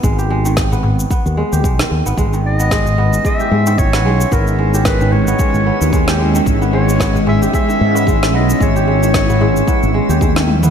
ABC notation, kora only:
X:1
M:4/4
L:1/16
Q:"Swing 16ths" 1/4=112
K:C#dor
V:1 name="Kora" clef=bass
G, =G ^G, D, z B, z2 B, z G, =G ^G, D, z B, | G, D, z B, G,2 B, z G, =G ^G, D, z B, G,2 | B, z G, =G ^G, D, z B, G,2 B, z G, =G ^G, D, | z B, G,2 B, z G, =G ^G, D, z B, G,2 B, z |
G, =G ^G, D, z B, G,2 B, z G, =G ^G, D, z B, |]